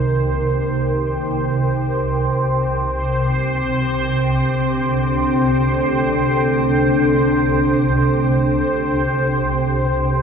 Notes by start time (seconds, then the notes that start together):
Already playing: C2 C3 D#4 A#4 C5
1.70 C4
3.54 D4
3.76 A4